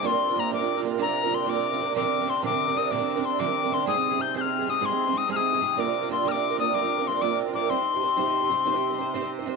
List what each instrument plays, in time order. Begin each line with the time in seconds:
Already playing: accordion C3 C4
0.03 twelve-string acoustic guitar A#3 D4 F4 A#4, tin whistle C6
0.11 twelve-string acoustic guitar D4 F4 A#4
0.28 twelve-string acoustic guitar D4 F4 A#4
0.36 twelve-string acoustic guitar A#3 D4 F4 A#4, tin whistle A#5
0.51 twelve-string acoustic guitar A#3 D4 F4 A#4, tin whistle D6
0.59 twelve-string acoustic guitar D4 F4 A#4
0.75 twelve-string acoustic guitar D4 F4 A#4
0.82 twelve-string acoustic guitar A#3 D4 F4 A#4
0.98 twelve-string acoustic guitar A#3 D4 F4 A#4, tin whistle A#5
1.06 twelve-string acoustic guitar D4 F4 A#4
1.23 twelve-string acoustic guitar D4 F4 A#4
1.31 twelve-string acoustic guitar A#3 D4 F4 A#4, tin whistle C6
1.46 twelve-string acoustic guitar A#3 D4 F4 A#4, tin whistle D6
1.55 twelve-string acoustic guitar D4 F4 A#4
1.71 twelve-string acoustic guitar D4 F4 A#4
1.79 twelve-string acoustic guitar A#3 D4 F4 A#4
1.94 twelve-string acoustic guitar A#2 D3 F3 C4 D4 A#4, accordion C3 C4, tin whistle D6
2.03 twelve-string acoustic guitar D3 C4 D4 A#4
2.20 twelve-string acoustic guitar D3 C4 D4 A#4
2.26 twelve-string acoustic guitar D3 C4 D4 A#4, tin whistle C6
2.42 twelve-string acoustic guitar A#2 D3 F3 C4 D4 A#4, tin whistle D6
2.50 twelve-string acoustic guitar D3 C4 D4 A#4
2.67 twelve-string acoustic guitar D3 C4 D4 A#4
2.74 twelve-string acoustic guitar D3 C4 D4 A#4, tin whistle D#6
2.90 twelve-string acoustic guitar A#2 D3 F3 C4 D4 A#4, tin whistle D6
2.99 twelve-string acoustic guitar D3 C4 D4 A#4
3.16 twelve-string acoustic guitar D3 C4 D4 A#4
3.23 twelve-string acoustic guitar D3 C4 D4 A#4, tin whistle C6
3.38 twelve-string acoustic guitar A#2 D3 F3 C4 D4 A#4, tin whistle D6
3.47 twelve-string acoustic guitar D3 C4 D4 A#4
3.63 twelve-string acoustic guitar D3 C4 D4 A#4
3.71 twelve-string acoustic guitar D3 C4 D4 A#4, tin whistle C6
3.86 twelve-string acoustic guitar G#3 C4 D#4 G#4, tin whistle D#6
3.95 twelve-string acoustic guitar C4 D#4 G#4
4.10 twelve-string acoustic guitar C4 D#4 G#4
4.17 twelve-string acoustic guitar G#3 C4 D#4 G#4, tin whistle G6
4.34 twelve-string acoustic guitar G#3 C4 D#4 G#4, tin whistle G6
4.41 twelve-string acoustic guitar D#4 G#4, tin whistle F6
4.45 twelve-string acoustic guitar C4
4.59 twelve-string acoustic guitar C4 D#4 G#4
4.66 twelve-string acoustic guitar G#3 C4 D#4 G#4, tin whistle D#6
4.81 twelve-string acoustic guitar G#3 C4 D#4 G#4
4.85 tin whistle C6
4.90 twelve-string acoustic guitar C4 D#4 G#4
5.05 twelve-string acoustic guitar C4 D#4 G#4
5.13 twelve-string acoustic guitar G#3 C4 D#4 G#4
5.17 tin whistle D#6
5.29 twelve-string acoustic guitar G#3 C4 D#4 G#4, tin whistle F6
5.36 twelve-string acoustic guitar C4 D#4 G#4, tin whistle D#6
5.53 twelve-string acoustic guitar C4 D#4 G#4
5.61 twelve-string acoustic guitar G#3 C4 D#4 G#4
5.76 twelve-string acoustic guitar A#3 D4 F4 A#4, tin whistle D6
5.85 twelve-string acoustic guitar D4 F4 A#4
6.01 twelve-string acoustic guitar D4 F4 A#4
6.09 twelve-string acoustic guitar A#3 D4 F4 A#4, tin whistle C6
6.24 twelve-string acoustic guitar A#3 D4 F4 A#4, tin whistle F6
6.31 twelve-string acoustic guitar F4 A#4, tin whistle D6
6.36 twelve-string acoustic guitar D4
6.50 twelve-string acoustic guitar D4 F4 A#4
6.58 twelve-string acoustic guitar A#3 D4 F4 A#4, tin whistle D#6
6.73 twelve-string acoustic guitar A#3 D4 F4 A#4, tin whistle D6
6.81 twelve-string acoustic guitar D4 F4 A#4
6.98 twelve-string acoustic guitar D4 F4 A#4
7.06 twelve-string acoustic guitar A#3 D4 F4 A#4, tin whistle C6
7.21 twelve-string acoustic guitar A#3 D4 F4 A#4, tin whistle D6
7.30 twelve-string acoustic guitar D4 F4 A#4
7.46 twelve-string acoustic guitar D4 F4 A#4
7.53 twelve-string acoustic guitar A#3 D4 F4 A#4, tin whistle D6
7.70 twelve-string acoustic guitar C4 D#4 G4 C5, tin whistle C6
7.78 twelve-string acoustic guitar D#4 G4 C5
7.94 twelve-string acoustic guitar D#4 G4 C5
8.01 twelve-string acoustic guitar C4 D#4 G4 C5
8.17 twelve-string acoustic guitar C4 D#4 G4 C5
8.24 twelve-string acoustic guitar D#4 G4 C5
8.41 twelve-string acoustic guitar D#4 G4 C5
8.49 twelve-string acoustic guitar C4 D#4 G4 C5
8.65 twelve-string acoustic guitar C4 D#4 G4 C5
8.74 twelve-string acoustic guitar D#4 G4 C5
8.91 twelve-string acoustic guitar D#4 G4 C5
8.98 twelve-string acoustic guitar C4 D#4 G4 C5
9.14 twelve-string acoustic guitar C4 D#4 G4 C5
9.22 twelve-string acoustic guitar D#4 G4 C5
9.39 twelve-string acoustic guitar D#4 G4 C5
9.46 twelve-string acoustic guitar C4 D#4 G4 C5